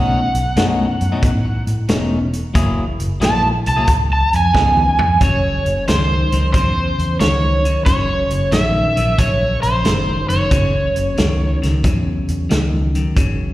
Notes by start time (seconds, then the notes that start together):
Already playing: B1 B2 A3 C#4 D#4 F#5
0.35 B1, closed hi-hat
0.56 F#2 B2 A3 C#4 D#4, snare, closed hi-hat
1.01 F#2, closed hi-hat
1.12 B2 A3 C#4 D#4
1.23 A2, kick, closed hi-hat
1.45 muted clean electric guitar stroke
1.67 A2, closed hi-hat
1.89 E1 B2 A3 C#4 D#4, snare, closed hi-hat
2.33 closed hi-hat
2.54 F#1 F#3 A#3 E4 G#4, kick, closed hi-hat
3.00 F#1, closed hi-hat
3.20 A#1 F#3 A#3 E4 G#4, snare, closed hi-hat
3.25 A5
3.66 C2 A5, closed hi-hat
3.76 F#3 A#3 E4 G#4
3.87 C#2, kick, closed hi-hat
4.10 A5, muted clean electric guitar stroke
4.33 F2 G#5, closed hi-hat
4.54 C#2 C#3 F3 B3 D#4, kick, snare
4.77 mid tom
4.99 F2, floor tom
5.21 F#1 F#2 C#3 C#5, kick, closed hi-hat
5.66 F#1, closed hi-hat
5.88 C#2 F#2 D#3 C5, snare, closed hi-hat
6.32 C#2 F#2 D#3, closed hi-hat
6.53 E2 F#2 C#3 C5, kick, closed hi-hat
6.99 E2, closed hi-hat
7.20 C#2 F#2 D#3 C#5, snare, closed hi-hat
7.65 F#2 D#3, closed hi-hat
7.86 F#1 F#2 C#3 C#5, kick, closed hi-hat
8.30 F#1, closed hi-hat
8.51 A#1 F#2 D#3 E5, snare, closed hi-hat
8.96 A#1 F#2 D#3, closed hi-hat
9.18 A#1 F#2 C#3 C#5, kick, closed hi-hat
9.63 A#1 C5, closed hi-hat
9.84 F#1 F#2 D#3, snare, closed hi-hat
10.29 F#1 F#2 D#3 C#5, closed hi-hat
10.51 F#1 F#2 C#3, kick, closed hi-hat
10.96 F#1, closed hi-hat
11.17 C#2 F#2 D#3, snare, closed hi-hat
11.62 C#2 F#2 D#3, snare, closed hi-hat
11.83 E2 F#2 C#3, kick, closed hi-hat
12.28 E2, closed hi-hat
12.49 C#2 F#2 D#3, snare, closed hi-hat
12.95 F#2 D#3, closed hi-hat
13.16 F#1 F#2 C#3, kick, closed hi-hat